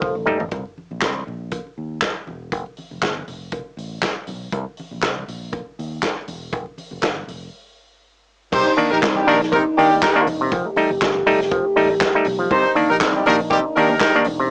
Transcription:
Already playing: french horn section G3 D#4 A4
0.01 fingered electric bass F1, clav F3, kick, cowbell, high conga
0.15 fingered electric bass A1, muted conga
0.26 clav G3 A3 D#4, floor tom, high conga, low conga
0.39 fingered electric bass A1, clav A3 D#4, floor tom
0.51 fingered electric bass C2, kick, closed hi-hat, cowbell, muted conga, low conga
0.66 muted conga
0.78 high conga
0.91 fingered electric bass A#1, high conga
1.01 fingered electric bass C2, kick, snare, clap, closed hi-hat, cowbell, muted conga
1.15 muted conga, high conga
1.27 fingered electric bass A#1, low conga
1.51 kick, closed hi-hat, cowbell, muted conga
1.67 muted conga
1.78 fingered electric bass D#2
2.01 kick, snare, clap, closed hi-hat, cowbell, muted conga, high conga
2.16 muted conga
2.27 fingered electric bass E1, high conga, low conga
2.52 fingered electric bass F1, kick, closed hi-hat, cowbell, low conga
2.66 muted conga
2.77 open hi-hat, high conga
2.91 fingered electric bass F1, high conga
3.02 fingered electric bass G1, kick, snare, clap, closed hi-hat, cowbell, muted conga
3.16 muted conga, high conga
3.27 fingered electric bass F1, open hi-hat, low conga
3.52 kick, closed hi-hat, cowbell, muted conga
3.77 fingered electric bass A1, open hi-hat
4.02 kick, snare, clap, closed hi-hat, cowbell, muted conga, high conga
4.16 muted conga
4.27 fingered electric bass B1, open hi-hat, high conga, low conga
4.52 fingered electric bass C2, kick, closed hi-hat, cowbell, low conga
4.77 open hi-hat, high conga
4.91 fingered electric bass A#1, high conga
5.02 fingered electric bass C2, kick, snare, clap, closed hi-hat, cowbell, muted conga
5.17 muted conga, high conga
5.28 fingered electric bass A#1, open hi-hat, low conga
5.53 kick, closed hi-hat, cowbell, muted conga
5.79 fingered electric bass D#2, open hi-hat
6.02 kick, snare, clap, closed hi-hat, cowbell, muted conga, high conga
6.16 muted conga
6.28 fingered electric bass E1, open hi-hat, high conga, low conga
6.53 fingered electric bass F1, kick, closed hi-hat, cowbell, low conga
6.66 muted conga
6.78 open hi-hat, high conga
6.91 fingered electric bass F1, high conga
7.02 fingered electric bass G1, kick, snare, clap, closed hi-hat, cowbell
7.16 high conga
7.27 fingered electric bass F1, open hi-hat, low conga
8.52 fingered electric bass C2, clav C3, french horn section A#3 D4 D#4, horn section D#4 G4 C5, kick, crash, cowbell, muted conga, low conga
8.65 clav A#3 D4, muted conga
8.77 clav D#3 A#3 D4, open hi-hat, high conga
8.91 fingered electric bass A#1, horn section D#4 G4 A#4, high conga
9.01 fingered electric bass C2, kick, snare, clap, closed hi-hat, cowbell
9.15 horn section G3 D#4 G4, high conga
9.27 fingered electric bass A#1, clav D#3 A#3 D4, horn section D#4 G4 A#4, open hi-hat, low conga
9.43 snare
9.52 clav C3, horn section D#4 G4 A#4, kick, closed hi-hat, cowbell, muted conga
9.65 muted conga
9.77 fingered electric bass D#2, clav D#3 A#3 D4, horn section G3 D#4 G4, open hi-hat
9.91 clav A#3 D4
10.01 horn section D#4 G4 A#4, kick, snare, clap, closed hi-hat, cowbell, muted conga, high conga
10.14 clav D#3 A#3 D4, muted conga
10.27 fingered electric bass E1, open hi-hat, high conga, low conga
10.41 clav C3
10.51 fingered electric bass F1, french horn section D#3 A3 G4, clav F3, kick, closed hi-hat, cowbell, muted conga, low conga
10.64 clav A3 D#4, muted conga
10.76 clav G3 A3 D#4, open hi-hat, high conga
10.90 fingered electric bass F1, high conga
11.01 fingered electric bass G1, kick, snare, clap, closed hi-hat, cowbell, muted conga
11.14 muted conga, high conga
11.26 fingered electric bass F1, clav G3 A3 D#4, open hi-hat, low conga
11.41 snare
11.51 clav F3, kick, closed hi-hat, cowbell
11.76 fingered electric bass A1, clav G3 A3 D#4, open hi-hat
11.90 clav A3 D#4
12.00 kick, snare, clap, closed hi-hat, cowbell, muted conga, high conga
12.13 clav G3 A3 D#4, muted conga
12.25 fingered electric bass B1, open hi-hat, high conga, low conga
12.39 clav F3
12.50 fingered electric bass C2, clav C3, french horn section A#3 D4 D#4, horn section D#4 G4 C5, kick, closed hi-hat, cowbell, low conga
12.63 clav A#3 D4, muted conga
12.75 clav D#3 A#3 D4, open hi-hat, high conga
12.89 fingered electric bass A#1, horn section D#4 G4 A#4, high conga
13.00 fingered electric bass C2, kick, snare, clap, closed hi-hat, cowbell
13.13 horn section G3 D#4 G4, high conga
13.25 fingered electric bass A#1, clav D#3 A#3 D4, horn section D#4 G4 A#4, open hi-hat, low conga
13.50 clav C3, horn section G3 D#4 G4, kick, closed hi-hat, cowbell, muted conga
13.76 fingered electric bass D#2, clav D#3 A#3 D4, horn section D#4 G4 A#4, open hi-hat
13.90 clav A#3 D4
14.00 horn section D#4 G4 A#4, kick, snare, clap, closed hi-hat, cowbell, muted conga, high conga
14.15 clav D#3 A#3 D4
14.24 fingered electric bass E1, open hi-hat, high conga, low conga
14.39 clav C3

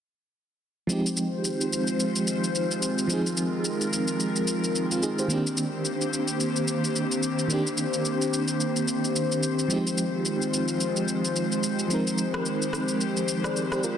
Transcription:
0.87 analog synth pad D#3 G#3 C4 F4 C5, fm electric piano F3 G#3 C4, shaker
0.92 fm electric piano D#4 G4
1.06 shaker
1.17 shaker
1.45 shaker
1.61 shaker
1.73 shaker
1.87 shaker
2.00 shaker
2.16 shaker
2.27 shaker
2.44 shaker
2.55 shaker
2.71 shaker
2.83 shaker
2.99 shaker
3.08 fm electric piano F3 G#3 C4, analog synth pad A#4, shaker
3.12 fm electric piano D#4 G#4
3.27 shaker
3.37 shaker
3.65 shaker
3.81 shaker
3.93 shaker
4.08 shaker
4.20 shaker
4.36 shaker
4.48 shaker
4.64 shaker
4.76 shaker
4.92 fm electric piano C4 F4, shaker
5.03 fm electric piano D#4 G#4, shaker
5.19 fm electric piano G4 C5, shaker
5.28 fm electric piano D#3 A#3 C4, analog synth pad A#3 G4 C5, shaker
5.32 fm electric piano D4 G4
5.47 shaker
5.57 shaker
5.85 shaker
6.01 shaker
6.13 shaker
6.28 shaker
6.40 shaker
6.56 shaker
6.68 shaker
6.84 shaker
6.96 shaker
7.12 shaker
7.23 shaker
7.39 shaker
7.48 fm electric piano D#3 A#3 C4, shaker
7.52 fm electric piano D4 G4
7.67 shaker
7.78 shaker
7.94 shaker
8.05 shaker
8.22 shaker
8.34 shaker
8.48 shaker
8.60 shaker
8.76 shaker
8.88 shaker
9.05 shaker
9.16 shaker
9.32 shaker
9.43 shaker
9.59 shaker
9.68 fm electric piano F3 G#3 C4, analog synth pad G#3 F4, shaker
9.72 fm electric piano D#4 G4
9.87 shaker
9.98 shaker
10.25 shaker
10.42 shaker
10.54 shaker
10.68 shaker
10.81 shaker
10.97 shaker
11.08 shaker
11.25 shaker
11.36 shaker
11.52 shaker
11.63 shaker
11.79 shaker
11.88 fm electric piano F3 G#3 C4, analog synth pad G4, shaker
11.92 fm electric piano D#4 A#4
12.07 shaker
12.18 shaker
12.34 cross-stick
12.46 shaker
12.62 shaker
12.73 cross-stick, shaker
12.88 shaker
13.01 shaker
13.17 shaker
13.28 shaker
13.44 fm electric piano G#4 D5, cross-stick, shaker
13.56 shaker
13.72 fm electric piano G4 C5, cross-stick, shaker
13.84 fm electric piano F4 A#4, shaker

